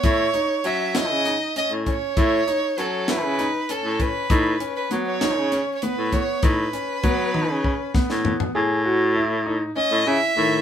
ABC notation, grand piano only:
X:1
M:7/8
L:1/8
Q:1/4=99
K:Alyd
V:1 name="Grand piano"
E D C E D C C | E D C E D C C | D C B, D C B, B, | D C B, D C B, B, |
G F E D C E D, |]